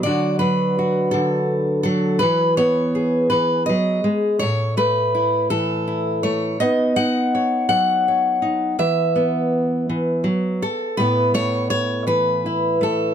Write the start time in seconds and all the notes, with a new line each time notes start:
Already playing: F#3
0.03 D3 F#3 D4 F#4 D5
0.39 F#3 B4
0.79 F#4
1.11 D3 A4
1.83 F#3 A4
2.19 E3 B4
2.57 B3 C#5
2.95 G#4
3.30 E3 B4
3.66 F#3 D#5
4.04 G#3
4.39 A2 C#5
4.77 A3 B4
5.15 E4
5.50 E3 A4
5.88 E4
6.23 A3 C#5
6.60 B3 D#4 D#5
6.96 D#4 F#5
7.35 C#5
7.69 F#3 F#5
8.08 C#5
8.42 D#4
8.79 E3 E5
9.16 B3
9.89 E3
10.24 F#3
10.62 A4
10.97 A2 A3 B3 E4 B4
11.34 A3 C#5
11.70 C#5
12.07 E3 B4
12.46 E4
12.81 A3 A4